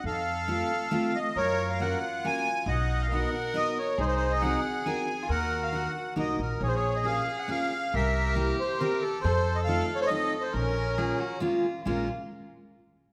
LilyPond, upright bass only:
\new Staff \with { instrumentName = "Upright bass" } { \clef bass \time 3/4 \key bes \minor \tempo 4 = 137 f,2 r4 | ges,2 r4 | b,,2 r4 | c,2 r4 |
ees,2 c,8 bes,,8 | bes,,2 r4 | c,2 r4 | f,2 r4 |
bes,,2 r4 | bes,,8 r2 r8 | }